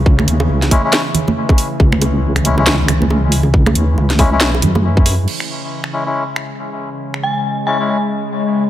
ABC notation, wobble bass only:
X:1
M:4/4
L:1/8
Q:"Swing 16ths" 1/4=138
K:C#m
V:1 name="Wobble bass" clef=bass
C,, D,, C,, z4 z | C,,8- | C,, D,, C,,2 B,,, F,,3 | z8 |
z8 |]